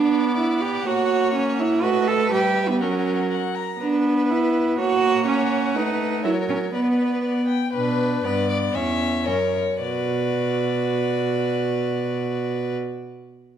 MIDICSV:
0, 0, Header, 1, 5, 480
1, 0, Start_track
1, 0, Key_signature, 2, "minor"
1, 0, Tempo, 489796
1, 846, Time_signature, 2, 2, 24, 8
1, 6119, Tempo, 500417
1, 8519, Tempo, 542005
1, 12799, End_track
2, 0, Start_track
2, 0, Title_t, "Violin"
2, 0, Program_c, 0, 40
2, 0, Note_on_c, 0, 78, 49
2, 1750, Note_off_c, 0, 78, 0
2, 1799, Note_on_c, 0, 75, 54
2, 2239, Note_off_c, 0, 75, 0
2, 2274, Note_on_c, 0, 76, 53
2, 2721, Note_off_c, 0, 76, 0
2, 2756, Note_on_c, 0, 78, 46
2, 3162, Note_off_c, 0, 78, 0
2, 3232, Note_on_c, 0, 78, 50
2, 3480, Note_on_c, 0, 82, 51
2, 3495, Note_off_c, 0, 78, 0
2, 3726, Note_off_c, 0, 82, 0
2, 4693, Note_on_c, 0, 78, 56
2, 6083, Note_off_c, 0, 78, 0
2, 6119, Note_on_c, 0, 73, 48
2, 6565, Note_off_c, 0, 73, 0
2, 6598, Note_on_c, 0, 74, 39
2, 6997, Note_off_c, 0, 74, 0
2, 7070, Note_on_c, 0, 74, 42
2, 7299, Note_off_c, 0, 74, 0
2, 7303, Note_on_c, 0, 79, 46
2, 7547, Note_off_c, 0, 79, 0
2, 7553, Note_on_c, 0, 71, 55
2, 8035, Note_on_c, 0, 74, 60
2, 8049, Note_off_c, 0, 71, 0
2, 8524, Note_on_c, 0, 76, 69
2, 8537, Note_off_c, 0, 74, 0
2, 8980, Note_on_c, 0, 73, 58
2, 8993, Note_off_c, 0, 76, 0
2, 9464, Note_off_c, 0, 73, 0
2, 9474, Note_on_c, 0, 74, 50
2, 12068, Note_off_c, 0, 74, 0
2, 12799, End_track
3, 0, Start_track
3, 0, Title_t, "Violin"
3, 0, Program_c, 1, 40
3, 0, Note_on_c, 1, 74, 41
3, 813, Note_off_c, 1, 74, 0
3, 854, Note_on_c, 1, 73, 49
3, 1756, Note_off_c, 1, 73, 0
3, 1802, Note_on_c, 1, 71, 53
3, 2718, Note_off_c, 1, 71, 0
3, 2762, Note_on_c, 1, 70, 45
3, 3496, Note_off_c, 1, 70, 0
3, 3741, Note_on_c, 1, 71, 40
3, 4655, Note_off_c, 1, 71, 0
3, 4699, Note_on_c, 1, 73, 46
3, 5606, Note_off_c, 1, 73, 0
3, 5651, Note_on_c, 1, 71, 45
3, 6092, Note_off_c, 1, 71, 0
3, 6119, Note_on_c, 1, 70, 48
3, 6565, Note_off_c, 1, 70, 0
3, 6598, Note_on_c, 1, 71, 36
3, 7326, Note_off_c, 1, 71, 0
3, 7552, Note_on_c, 1, 71, 37
3, 8001, Note_off_c, 1, 71, 0
3, 8038, Note_on_c, 1, 71, 41
3, 8269, Note_off_c, 1, 71, 0
3, 8275, Note_on_c, 1, 74, 49
3, 8352, Note_off_c, 1, 74, 0
3, 8507, Note_on_c, 1, 73, 42
3, 8967, Note_off_c, 1, 73, 0
3, 8971, Note_on_c, 1, 70, 44
3, 9257, Note_off_c, 1, 70, 0
3, 9453, Note_on_c, 1, 71, 36
3, 12058, Note_off_c, 1, 71, 0
3, 12799, End_track
4, 0, Start_track
4, 0, Title_t, "Cello"
4, 0, Program_c, 2, 42
4, 0, Note_on_c, 2, 62, 63
4, 329, Note_off_c, 2, 62, 0
4, 362, Note_on_c, 2, 64, 59
4, 601, Note_on_c, 2, 67, 67
4, 615, Note_off_c, 2, 64, 0
4, 846, Note_on_c, 2, 66, 75
4, 861, Note_off_c, 2, 67, 0
4, 1314, Note_off_c, 2, 66, 0
4, 1320, Note_on_c, 2, 61, 66
4, 1559, Note_on_c, 2, 64, 75
4, 1574, Note_off_c, 2, 61, 0
4, 1793, Note_on_c, 2, 66, 82
4, 1808, Note_off_c, 2, 64, 0
4, 2030, Note_on_c, 2, 69, 81
4, 2045, Note_off_c, 2, 66, 0
4, 2265, Note_off_c, 2, 69, 0
4, 2271, Note_on_c, 2, 67, 74
4, 2631, Note_on_c, 2, 59, 59
4, 2646, Note_off_c, 2, 67, 0
4, 2752, Note_on_c, 2, 61, 59
4, 2767, Note_off_c, 2, 59, 0
4, 3240, Note_off_c, 2, 61, 0
4, 3732, Note_on_c, 2, 62, 66
4, 4208, Note_on_c, 2, 64, 61
4, 4223, Note_off_c, 2, 62, 0
4, 4683, Note_off_c, 2, 64, 0
4, 4689, Note_on_c, 2, 66, 83
4, 5157, Note_off_c, 2, 66, 0
4, 5167, Note_on_c, 2, 61, 68
4, 5642, Note_on_c, 2, 63, 71
4, 5657, Note_off_c, 2, 61, 0
4, 6111, Note_off_c, 2, 63, 0
4, 6117, Note_on_c, 2, 64, 61
4, 6194, Note_off_c, 2, 64, 0
4, 6356, Note_on_c, 2, 61, 54
4, 6433, Note_off_c, 2, 61, 0
4, 6597, Note_on_c, 2, 59, 52
4, 7304, Note_off_c, 2, 59, 0
4, 7561, Note_on_c, 2, 47, 45
4, 8006, Note_off_c, 2, 47, 0
4, 8041, Note_on_c, 2, 43, 44
4, 8510, Note_off_c, 2, 43, 0
4, 8525, Note_on_c, 2, 40, 53
4, 8985, Note_on_c, 2, 42, 48
4, 8999, Note_off_c, 2, 40, 0
4, 9270, Note_off_c, 2, 42, 0
4, 9467, Note_on_c, 2, 47, 42
4, 12065, Note_off_c, 2, 47, 0
4, 12799, End_track
5, 0, Start_track
5, 0, Title_t, "Viola"
5, 0, Program_c, 3, 41
5, 0, Note_on_c, 3, 59, 53
5, 806, Note_off_c, 3, 59, 0
5, 850, Note_on_c, 3, 58, 54
5, 1798, Note_on_c, 3, 57, 58
5, 1813, Note_off_c, 3, 58, 0
5, 2268, Note_off_c, 3, 57, 0
5, 2274, Note_on_c, 3, 55, 57
5, 2759, Note_on_c, 3, 54, 54
5, 2773, Note_off_c, 3, 55, 0
5, 3534, Note_off_c, 3, 54, 0
5, 3724, Note_on_c, 3, 59, 53
5, 4690, Note_on_c, 3, 58, 57
5, 4705, Note_off_c, 3, 59, 0
5, 5640, Note_off_c, 3, 58, 0
5, 5647, Note_on_c, 3, 57, 56
5, 6125, Note_on_c, 3, 54, 47
5, 6140, Note_off_c, 3, 57, 0
5, 6594, Note_off_c, 3, 54, 0
5, 6599, Note_on_c, 3, 59, 42
5, 7350, Note_off_c, 3, 59, 0
5, 7563, Note_on_c, 3, 62, 42
5, 8043, Note_on_c, 3, 59, 39
5, 8058, Note_off_c, 3, 62, 0
5, 8523, Note_on_c, 3, 61, 46
5, 8537, Note_off_c, 3, 59, 0
5, 8976, Note_off_c, 3, 61, 0
5, 8981, Note_on_c, 3, 61, 39
5, 9052, Note_off_c, 3, 61, 0
5, 9466, Note_on_c, 3, 66, 41
5, 12064, Note_off_c, 3, 66, 0
5, 12799, End_track
0, 0, End_of_file